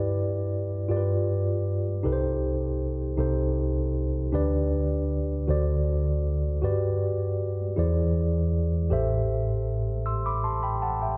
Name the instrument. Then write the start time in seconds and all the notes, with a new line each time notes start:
tine electric piano
Already playing: G2 E4 G4 B4 D5
0.89 G2 F4 G4 A#4 D5
0.97 B4
2.03 C2 C3 D#4 G4 A4 B4
2.12 C5
3.17 C2 C3 D#4 G4 A4 C5
4.32 D2 D3 D4 G4 B4 D5
5.48 D2 D3 F#4 A4 C5 D5
6.62 G2 F#4 G4 B4 D5
7.76 E2 E3 E4 G#4 C5 D5
8.90 A1 A2 G4 A4 C5 E5
10.06 C6 E6
10.26 B5 D6
10.44 A5 C6
10.63 G5 B5
10.82 F#5 A5
11.02 E5 G5